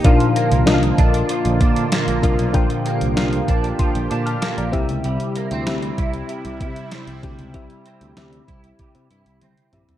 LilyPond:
<<
  \new Staff \with { instrumentName = "FM electric piano" } { \time 4/4 \key c \dorian \tempo 4 = 96 << { r1 | r2 c'''8 <f'' d'''>16 <a'' f'''>16 <f'' d'''>16 <d'' bes''>8 r16 | r1 | r1 | } \\ { <d' f' bes' f''>8. r16 <d' f' bes' ees'' f''>4. r4 <d' f' bes' f''>8 | <d' f' bes' g''>8. r16 <d' f' bes' f''>4. r4 <c' e' g' e''>8~ | <c' e' g' e''>8 r8 <c' e' g' e''>4. r4 <c' e' g' g''>8 | <c' e' g' e''>8. r16 <c' e' g' e''>4. r4 <c' e' g' e''>8 | } >> }
  \new Staff \with { instrumentName = "FM electric piano" } { \clef bass \time 4/4 \key c \dorian bes,4. r2 r8 | bes,4. r2 c8~ | c4 r2 r8 c8~ | c4 r2. | }
  \new Staff \with { instrumentName = "Analog synth pad" } { \time 4/4 \key c \dorian << { f'1 | g'2.~ g'8 e'8~ | e'1~ | e'1 | } \\ { <d bes>1~ | <d bes>2.~ <d bes>8 <c g>8~ | <c g>1~ | <c g>1 | } >> }
  \new Staff \with { instrumentName = "Clean electric guitar" } { \time 4/4 \key c \dorian f8 bes8 f8 d'8 f8 d'8 bes8 f8 | f8 bes8 f8 d'8 f8 d'8 bes8 g8 | g8 bes16 c'16 g8 e'8 g8 e'8 c'8 g8 | g8 c'8 g8 e'8 g8 e'8 c'8 g8 | }
  \new Staff \with { instrumentName = "Picked electric bass" } { \clef bass \time 4/4 \key c \dorian bes,,16 r8 c,16 c,8 bes,,8 r16 bes,,16 bes,8 r16 bes,,16 c,16 ces,16 | bes,,16 r8 c,16 c,8 bes,,8 r16 bes,,16 bes,8 r16 bes,,16 c,16 des,16 | c,16 r8 d,16 d,8 c,8 r16 c,16 c8 r16 c,16 d,16 des,16 | c,16 r8 d,16 d,8 c,8 r16 c16 g,16 c,16 c,16 r16 bes,,16 c,16 | }
  \new DrumStaff \with { instrumentName = "Drums" } \drummode { \time 4/4 <hh bd>16 hh16 hh16 hh16 <hh sn>16 hh16 <hh bd>16 hh16 hh16 hh16 <hh bd>16 hh16 <hh sn>16 hh16 <hh bd>16 hh16 | <hh bd>16 hh16 hh16 hh16 <hh sn>16 hh16 <hh bd>16 hh16 <hh bd>16 hh16 hh16 hh16 <hh sn>16 hh16 <hh bd>16 hh16 | hh16 hh16 hh16 hh16 <hh sn>16 hh16 <hh bd>16 hh16 hh16 hh16 <hh bd>16 hh16 <hh sn>16 hh16 <hh bd>16 hh16 | <hh bd>16 hh16 hh16 hh16 <hh sn>16 hh16 <hh bd>16 hh16 <hh bd>16 hh16 hh16 hh16 <hh tommh>16 hh16 <hh toml>16 <hh tomfh>16 | }
>>